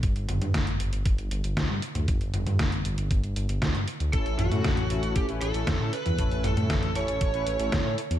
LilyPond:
<<
  \new Staff \with { instrumentName = "Lead electric guitar" } { \time 4/4 \key g \lydian \tempo 4 = 117 r1 | r1 | a'8 fis'4. g'8 a'4 b'8~ | b'8 a'4 cis''2 r8 | }
  \new Staff \with { instrumentName = "Analog polysynth" } { \time 4/4 \key g \lydian r1 | r1 | <a cis' e' a'>8. <a cis' e' a'>8. <a cis' e' a'>8. <a cis' e' b'>8 <a cis' e' a'>8 <a cis' e' a'>16 r8 | <a cis' e' a'>8. <a cis' e' a'>8. <a cis' e' a'>8. <a cis' e' b'>8 <a cis' e' a'>8 <a cis' e' a'>16 r8 | }
  \new Staff \with { instrumentName = "Detuned saw bass" } { \clef bass \time 4/4 \key g \lydian g,,16 g,,16 g,,16 g,16 g,,16 g,,16 g,,16 g,,16 g,,16 g,,16 g,,16 g,,16 d,16 g,16 r16 d,16 | g,,16 g,,16 g,,16 g,16 g,,16 g,,16 g,,16 g,,16 g,,16 g,,16 g,,16 g,,16 d,16 g,16 r16 d,16 | a,,16 a,,16 a,,16 a,16 a,,16 a,,16 a,,16 a,,16 a,,16 a,,16 a,,16 a,,16 e,16 a,16 r16 e,16 | a,,16 a,,16 a,,16 a,16 a,,16 a,,16 a,,16 a,,16 a,,16 a,,16 a,,16 a,,16 e,16 a,16 r16 e,16 | }
  \new DrumStaff \with { instrumentName = "Drums" } \drummode { \time 4/4 <hh bd>16 hh16 <hh toml>16 <hh toml>16 <hh bd sn>16 hh16 hh16 hh16 <hh bd>16 hh16 hh16 hh16 <hh bd sn>8 hh16 <hh toml>16 | <hh bd>16 hh16 <hh toml>16 <hh toml>16 <hh bd sn>16 hh16 hh16 hh16 <hh bd>16 hh16 hh16 hh16 <hh bd sn>16 hh16 hh16 hh16 | <hh bd>16 hh16 <hh toml>16 <hh toml>16 <hh bd sn>16 hh16 hh16 hh16 <hh bd>16 hh16 hh16 hh16 <hh bd sn>8 hh16 <hh toml>16 | <hh bd>16 hh16 <hh toml>16 <hh toml>16 <hh bd sn>16 hh16 hh16 hh16 <hh bd>16 hh16 hh16 hh16 <hh bd sn>8 hh16 hh16 | }
>>